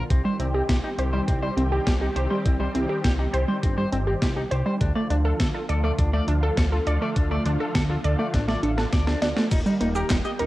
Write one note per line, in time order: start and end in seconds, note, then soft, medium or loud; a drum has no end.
0.10 0.21 C2 medium
0.10 4.77 D#3 medium
0.10 4.77 G3 medium
0.10 4.77 C4 medium
0.10 0.21 C4 medium
0.10 4.77 G4 medium
0.10 kick loud
0.10 closed hi-hat medium
0.25 0.31 G3 loud
0.25 0.36 C5 loud
0.39 0.62 C2 loud
0.39 0.46 C4 medium
0.39 0.44 C4 medium
0.39 closed hi-hat medium
0.54 0.62 C4 medium
0.54 0.68 G4 medium
0.69 0.80 C2 medium
0.69 0.76 G4 loud
0.69 kick loud
0.69 snare loud
0.69 closed hi-hat medium
0.84 0.88 D#4 medium
0.84 0.95 G4 medium
0.98 1.21 C2 medium
0.98 1.09 G4 medium
0.98 1.10 C5 loud
0.98 closed hi-hat medium
1.13 1.24 G3 medium
1.13 1.20 C5 loud
1.28 1.50 C2 medium
1.28 1.39 C4 medium
1.28 kick loud
1.28 closed hi-hat medium
1.42 1.49 G3 loud
1.42 1.54 C5 loud
1.57 1.80 C2 loud
1.57 1.62 C4 loud
1.57 1.64 C4 medium
1.57 closed hi-hat medium
1.72 1.79 C4 medium
1.72 1.86 G4 loud
1.86 2.09 C2 medium
1.86 1.94 G4 loud
1.86 kick loud
1.86 snare loud
1.86 closed hi-hat medium
2.01 2.06 D#4 medium
2.01 2.12 G4 medium
2.16 2.27 C2 loud
2.16 2.27 G4 medium
2.16 2.27 C5 loud
2.16 closed hi-hat medium
2.30 2.42 G3 loud
2.30 2.38 C5 loud
2.45 2.68 C2 medium
2.45 2.56 C4 medium
2.45 kick loud
2.45 closed hi-hat medium
2.60 2.67 G3 loud
2.60 2.71 C5 medium
2.75 2.86 C2 loud
2.75 2.79 C4 medium
2.75 2.81 C4 medium
2.75 closed hi-hat medium
2.89 2.97 C4 medium
2.89 3.03 G4 loud
3.04 3.27 C2 loud
3.04 3.12 G4 loud
3.04 kick loud
3.04 snare loud
3.04 closed hi-hat medium
3.19 3.23 D#4 medium
3.19 3.30 G4 medium
3.33 3.45 C2 medium
3.33 3.45 G4 medium
3.33 3.44 C5 loud
3.33 closed hi-hat medium
3.48 3.59 G3 loud
3.48 3.56 C5 medium
3.63 3.86 G1 medium
3.63 3.74 C4 medium
3.63 kick loud
3.63 closed hi-hat medium
3.78 3.84 G3 loud
3.78 3.89 C5 loud
3.92 4.15 G1 medium
3.92 3.99 C4 medium
3.92 3.97 C4 loud
3.92 closed hi-hat medium
4.07 4.15 C4 medium
4.07 4.21 G4 loud
4.22 4.45 C2 medium
4.22 4.29 G4 loud
4.22 kick loud
4.22 snare loud
4.22 closed hi-hat medium
4.36 4.41 D#4 medium
4.36 4.48 G4 medium
4.51 4.63 C2 loud
4.51 4.63 G4 medium
4.51 4.62 C5 loud
4.51 closed hi-hat medium
4.66 4.77 G3 loud
4.66 4.73 C5 medium
4.81 4.92 D2 loud
4.81 9.48 D3 medium
4.81 9.48 F3 medium
4.81 9.48 A3 medium
4.81 4.92 D4 medium
4.81 9.48 F4 loud
4.81 kick loud
4.81 closed hi-hat medium
4.95 5.02 A3 loud
4.95 5.07 D5 loud
5.10 5.33 D2 loud
5.10 5.15 D4 loud
5.10 5.17 D4 medium
5.10 closed hi-hat medium
5.25 5.32 D4 medium
5.25 5.39 A4 loud
5.40 5.51 D2 medium
5.40 5.47 A4 loud
5.40 kick loud
5.40 snare loud
5.40 closed hi-hat medium
5.54 5.59 F4 medium
5.54 5.65 A4 medium
5.69 5.92 D2 medium
5.69 5.80 A4 medium
5.69 5.80 D5 loud
5.69 closed hi-hat medium
5.84 5.95 A3 loud
5.84 5.91 D5 loud
5.99 6.21 D2 medium
5.99 6.10 D4 medium
5.99 kick loud
5.99 closed hi-hat medium
6.13 6.20 A3 loud
6.13 6.24 D5 loud
6.28 6.50 D2 medium
6.28 6.34 D4 medium
6.28 6.32 D4 loud
6.28 closed hi-hat medium
6.43 6.50 D4 medium
6.43 6.57 A4 loud
6.57 6.80 D2 medium
6.57 6.65 A4 loud
6.57 kick loud
6.57 snare loud
6.57 closed hi-hat medium
6.72 6.77 F4 medium
6.72 6.83 A4 medium
6.87 6.98 D2 loud
6.87 6.98 A4 medium
6.87 6.98 D5 loud
6.87 closed hi-hat medium
7.01 7.12 A3 loud
7.01 7.09 D5 loud
7.16 7.39 D2 medium
7.16 7.27 D4 medium
7.16 kick loud
7.16 closed hi-hat medium
7.31 7.37 A3 loud
7.31 7.42 D5 loud
7.45 7.57 D2 loud
7.45 7.52 D4 medium
7.45 7.50 D4 medium
7.45 closed hi-hat medium
7.60 7.68 D4 medium
7.60 7.74 A4 loud
7.75 7.97 D2 loud
7.75 7.82 A4 loud
7.75 kick loud
7.75 snare loud
7.75 closed hi-hat medium
7.89 7.94 F4 medium
7.89 8.00 A4 medium
8.04 8.16 D2 medium
8.04 8.16 A4 medium
8.04 8.15 D5 loud
8.04 closed hi-hat medium
8.19 8.30 A3 loud
8.19 8.26 D5 loud
8.34 8.56 A1 medium
8.34 8.45 D4 medium
8.34 kick loud
8.34 snare medium
8.34 closed hi-hat medium
8.48 8.55 A3 loud
8.48 8.60 D5 loud
8.48 snare medium
8.63 8.86 A1 medium
8.63 8.70 D4 medium
8.63 8.71 A4 medium
8.63 closed hi-hat medium
8.78 8.89 D4 medium
8.78 8.92 A4 loud
8.78 snare medium
8.93 9.15 D2 medium
8.93 9.04 D5 medium
8.93 kick loud
8.93 snare medium
8.93 closed hi-hat medium
9.07 9.18 D4 loud
9.07 9.18 A4 medium
9.07 snare medium
9.22 9.33 D2 loud
9.22 9.26 D4 loud
9.22 9.33 D5 loud
9.22 snare medium
9.22 closed hi-hat medium
9.36 9.47 A3 loud
9.36 9.44 D4 loud
9.36 snare medium
9.51 9.63 D#1 loud
9.51 10.46 D#3 medium
9.51 10.46 G3 medium
9.51 10.46 A#3 medium
9.51 9.59 D#4 medium
9.51 10.46 G5 medium
9.51 kick loud
9.51 closed hi-hat loud
9.51 crash loud
9.51 cabasa medium
9.66 9.73 G3 loud
9.66 9.74 D#4 medium
9.66 cabasa soft
9.81 10.03 D#1 loud
9.81 9.87 A#3 medium
9.81 9.88 D#4 medium
9.81 closed hi-hat medium
9.95 10.09 G4 loud
9.95 10.07 A#4 loud
9.95 cabasa medium
10.10 10.22 D#1 loud
10.10 10.15 D#4 medium
10.10 kick loud
10.10 snare loud
10.10 clap loud
10.10 closed hi-hat loud
10.10 cabasa medium
10.25 10.36 G4 medium
10.25 10.30 D#5 loud
10.25 cabasa soft
10.39 10.46 D#1 medium
10.39 10.46 D#4 medium
10.39 10.46 A#4 loud
10.39 closed hi-hat medium